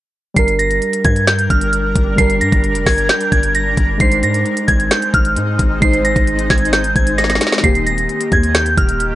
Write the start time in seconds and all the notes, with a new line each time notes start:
0.34 G1 G3 D4 A#4 C7, kick, closed hi-hat
0.39 A#4
0.48 closed hi-hat
0.59 A#6, closed hi-hat
0.71 closed hi-hat
0.82 closed hi-hat
0.93 closed hi-hat
1.05 G2 G#6, kick, closed hi-hat
1.16 closed hi-hat
1.27 G6, snare, closed hi-hat
1.39 closed hi-hat
1.50 G1 F6, kick, closed hi-hat
1.61 closed hi-hat
1.73 closed hi-hat
1.96 G1, kick, closed hi-hat
2.16 G1 G3 D4 C7, kick, closed hi-hat
2.20 A#4
2.30 closed hi-hat
2.41 G2 A#6, closed hi-hat
2.52 G1, kick, closed hi-hat
2.64 closed hi-hat
2.75 F1, closed hi-hat
2.86 G1 G#6, kick, snare, open hi-hat
2.98 closed hi-hat
3.09 G6, snare, closed hi-hat
3.21 closed hi-hat
3.32 G1 G#6, kick, closed hi-hat
3.43 closed hi-hat
3.55 A#6, closed hi-hat
3.77 G1, kick, closed hi-hat
3.98 G#1 G#3 C4 D#4 C7, kick, closed hi-hat
4.02 C5
4.12 closed hi-hat
4.23 G#2 A#6, closed hi-hat
4.34 closed hi-hat
4.46 closed hi-hat
4.57 closed hi-hat
4.68 G#1 G#6, kick, closed hi-hat
4.80 closed hi-hat
4.91 G6, snare, closed hi-hat
5.02 closed hi-hat
5.14 G#1 F6, kick, closed hi-hat
5.25 closed hi-hat
5.37 G#2, closed hi-hat
5.59 G#1, kick, closed hi-hat
5.80 G#1 G#3 D#4 C7, kick, closed hi-hat
5.85 C5
5.93 closed hi-hat
6.05 A#6, closed hi-hat
6.16 G#1, kick, closed hi-hat
6.27 closed hi-hat
6.39 closed hi-hat
6.50 G#1 G#6, kick, snare, closed hi-hat, open hi-hat
6.58 closed hi-hat
6.65 closed hi-hat
6.73 G6, snare, closed hi-hat
6.84 closed hi-hat
6.96 G#1 G#6, kick, closed hi-hat
7.07 closed hi-hat
7.18 A#6, snare, closed hi-hat
7.24 snare
7.30 snare, closed hi-hat
7.35 snare
7.41 snare, closed hi-hat
7.47 snare
7.52 snare
7.58 D#3, snare
7.63 D#1 D#3 A#3 G4 C7, kick, closed hi-hat
7.75 closed hi-hat
7.86 A#6, closed hi-hat
7.98 closed hi-hat
8.09 closed hi-hat
8.21 closed hi-hat
8.32 D#2 G#6, kick, closed hi-hat
8.43 closed hi-hat
8.55 G6, snare, closed hi-hat
8.66 closed hi-hat
8.77 D#1 F6, kick, closed hi-hat
8.89 closed hi-hat
9.00 closed hi-hat